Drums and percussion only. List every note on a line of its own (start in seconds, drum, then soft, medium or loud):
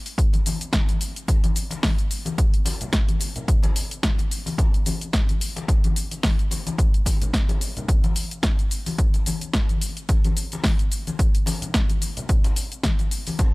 0.06 open hi-hat medium
0.06 shaker soft
0.18 kick loud
0.18 closed hi-hat medium
0.18 shaker soft
0.33 closed hi-hat soft
0.33 muted conga medium
0.33 shaker soft
0.46 open hi-hat loud
0.46 high conga medium
0.46 shaker medium
0.61 closed hi-hat soft
0.61 shaker soft
0.73 kick loud
0.73 snare loud
0.73 closed hi-hat medium
0.73 muted conga medium
0.73 shaker soft
0.89 closed hi-hat soft
0.89 high conga medium
0.89 shaker soft
1.01 open hi-hat loud
1.01 shaker medium
1.16 closed hi-hat soft
1.16 shaker soft
1.28 kick loud
1.28 closed hi-hat medium
1.28 muted conga medium
1.28 shaker soft
1.44 closed hi-hat soft
1.44 high conga loud
1.44 shaker soft
1.56 open hi-hat loud
1.56 shaker medium
1.71 closed hi-hat soft
1.71 muted conga medium
1.71 shaker soft
1.83 kick loud
1.83 snare loud
1.83 open hi-hat medium
1.83 high conga medium
1.83 shaker soft
1.98 closed hi-hat soft
1.98 shaker soft
2.11 open hi-hat loud
2.11 shaker medium
2.25 closed hi-hat soft
2.25 muted conga medium
2.25 high conga loud
2.25 shaker soft
2.38 kick loud
2.38 closed hi-hat medium
2.38 shaker soft
2.54 closed hi-hat soft
2.54 shaker soft
2.65 open hi-hat loud
2.65 muted conga medium
2.65 high conga loud
2.65 shaker medium
2.81 closed hi-hat soft
2.81 low conga medium
2.81 shaker soft
2.93 kick loud
2.93 snare loud
2.93 closed hi-hat medium
2.93 shaker soft
3.08 closed hi-hat soft
3.08 high conga medium
3.08 shaker soft
3.20 open hi-hat loud
3.20 muted conga medium
3.20 shaker medium
3.36 closed hi-hat soft
3.36 low conga medium
3.36 shaker soft
3.48 kick loud
3.48 closed hi-hat medium
3.48 shaker soft
3.63 closed hi-hat soft
3.63 muted conga medium
3.63 high conga medium
3.63 shaker soft
3.76 open hi-hat loud
3.76 shaker medium
3.91 closed hi-hat soft
3.91 shaker soft
4.03 kick loud
4.03 snare loud
4.03 closed hi-hat medium
4.03 high conga medium
4.03 shaker soft
4.18 closed hi-hat soft
4.18 muted conga medium
4.18 shaker soft
4.31 open hi-hat loud
4.31 shaker medium
4.46 open hi-hat medium
4.46 high conga medium
4.46 shaker soft
4.58 kick loud
4.58 closed hi-hat medium
4.58 muted conga medium
4.58 shaker soft
4.74 closed hi-hat soft
4.74 shaker soft
4.86 open hi-hat loud
4.86 high conga loud
4.86 shaker medium
5.01 closed hi-hat soft
5.01 shaker soft
5.13 kick loud
5.13 snare loud
5.13 closed hi-hat medium
5.13 muted conga medium
5.13 shaker soft
5.29 closed hi-hat soft
5.29 high conga medium
5.29 shaker soft
5.41 open hi-hat loud
5.41 shaker medium
5.56 closed hi-hat soft
5.56 muted conga medium
5.56 shaker soft
5.68 kick loud
5.68 closed hi-hat medium
5.68 shaker soft
5.84 closed hi-hat soft
5.84 high conga medium
5.84 shaker soft
5.96 open hi-hat loud
5.96 shaker medium
6.11 closed hi-hat soft
6.11 muted conga soft
6.11 shaker soft
6.23 kick loud
6.23 snare loud
6.23 open hi-hat medium
6.23 high conga medium
6.23 shaker soft
6.39 closed hi-hat soft
6.39 shaker soft
6.51 open hi-hat loud
6.51 muted conga medium
6.51 shaker medium
6.67 closed hi-hat soft
6.67 high conga loud
6.67 shaker soft
6.78 kick loud
6.78 closed hi-hat medium
6.78 shaker soft
6.94 closed hi-hat soft
6.94 shaker soft
7.06 kick medium
7.06 open hi-hat loud
7.06 muted conga medium
7.06 high conga medium
7.06 shaker medium
7.22 closed hi-hat soft
7.22 low conga medium
7.22 shaker soft
7.33 kick loud
7.33 snare loud
7.33 closed hi-hat medium
7.33 shaker soft
7.48 closed hi-hat soft
7.48 muted conga medium
7.48 high conga medium
7.48 shaker soft
7.61 open hi-hat loud
7.61 shaker medium
7.77 closed hi-hat soft
7.77 low conga medium
7.77 shaker soft
7.88 kick loud
7.88 closed hi-hat medium
7.88 shaker soft
8.04 closed hi-hat soft
8.04 muted conga medium
8.04 high conga loud
8.04 shaker soft
8.16 open hi-hat loud
8.16 shaker medium
8.31 closed hi-hat soft
8.31 shaker soft
8.43 kick loud
8.43 snare loud
8.43 closed hi-hat medium
8.43 muted conga medium
8.43 high conga medium
8.43 shaker soft
8.59 closed hi-hat soft
8.59 shaker soft
8.71 open hi-hat loud
8.71 shaker medium
8.86 open hi-hat medium
8.86 high conga loud
8.86 shaker soft
8.98 kick loud
8.98 closed hi-hat medium
8.98 shaker soft
9.14 closed hi-hat soft
9.14 muted conga medium
9.14 shaker soft
9.26 open hi-hat loud
9.26 high conga loud
9.26 shaker medium
9.41 closed hi-hat soft
9.41 shaker soft
9.53 kick loud
9.53 snare loud
9.53 closed hi-hat medium
9.53 muted conga medium
9.53 shaker soft
9.69 closed hi-hat soft
9.69 high conga medium
9.69 shaker soft
9.81 open hi-hat loud
9.81 shaker medium
9.97 closed hi-hat soft
9.97 shaker soft
10.09 kick loud
10.09 closed hi-hat medium
10.09 muted conga medium
10.09 shaker soft
10.24 closed hi-hat soft
10.24 high conga loud
10.24 shaker soft
10.37 open hi-hat loud
10.37 shaker medium
10.52 closed hi-hat soft
10.52 muted conga medium
10.52 shaker soft
10.64 kick loud
10.64 snare loud
10.64 open hi-hat medium
10.64 high conga medium
10.64 shaker soft
10.79 closed hi-hat soft
10.79 shaker soft
10.92 open hi-hat loud
10.92 shaker medium
11.07 closed hi-hat soft
11.07 muted conga soft
11.07 high conga loud
11.07 shaker soft
11.19 kick loud
11.19 closed hi-hat medium
11.19 shaker soft
11.35 closed hi-hat soft
11.35 shaker soft
11.46 open hi-hat loud
11.46 muted conga medium
11.46 high conga medium
11.46 shaker medium
11.62 closed hi-hat soft
11.62 low conga medium
11.62 shaker soft
11.74 kick loud
11.74 snare loud
11.74 closed hi-hat medium
11.74 shaker soft
11.89 closed hi-hat soft
11.89 high conga medium
11.89 shaker soft
12.01 open hi-hat loud
12.01 muted conga soft
12.01 shaker medium
12.17 closed hi-hat soft
12.17 low conga medium
12.17 shaker soft
12.29 kick loud
12.29 closed hi-hat medium
12.29 shaker soft
12.44 closed hi-hat soft
12.44 muted conga medium
12.44 high conga medium
12.44 shaker soft
12.56 open hi-hat loud
12.56 shaker medium
12.72 closed hi-hat soft
12.72 shaker soft
12.83 kick loud
12.83 snare loud
12.83 closed hi-hat medium
12.83 high conga medium
12.83 shaker soft
12.99 closed hi-hat soft
12.99 muted conga medium
12.99 shaker soft
13.11 open hi-hat loud
13.11 shaker medium
13.27 open hi-hat medium
13.27 high conga medium
13.27 shaker soft
13.39 kick loud
13.39 closed hi-hat medium
13.39 muted conga medium
13.39 shaker soft